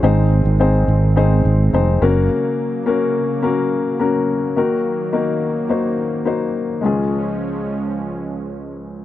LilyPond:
<<
  \new Staff \with { instrumentName = "Grand piano" } { \time 4/4 \key des \major \tempo 4 = 106 <c' ees' aes' c''>4 <c' ees' aes' c''>4 <c' ees' aes' c''>4 <c' ees' aes' c''>8 <bes des' ges' bes'>8~ | <bes des' ges' bes'>4 <bes des' ges' bes'>4 <bes des' ges' bes'>4 <bes des' ges' bes'>4 | <bes ees' ges' bes'>4 <bes ees' ges' bes'>4 <bes ees' ges' c''>4 <bes ees' ges' c''>4 | <aes des' f' aes'>1 | }
  \new Staff \with { instrumentName = "Grand piano" } { \clef bass \time 4/4 \key des \major aes,4. r2 r8 | r1 | ees4. r2 r8 | des,1 | }
  \new Staff \with { instrumentName = "Analog synth pad" } { \clef bass \time 4/4 \key des \major << { <ees c'>2.~ <ees c'>8 <des bes>8~ | <des bes>1 | <ees bes>1 | <f aes des'>1 | } \\ { aes2.~ aes8 ges8~ | ges1~ | ges1 | r1 | } >> }
  \new Staff \with { instrumentName = "Fingered electric bass" } { \clef bass \time 4/4 \key des \major aes,,8. aes,,8. aes,,4 aes,,8 f,,8 ges,,8 | r1 | r1 | r1 | }
>>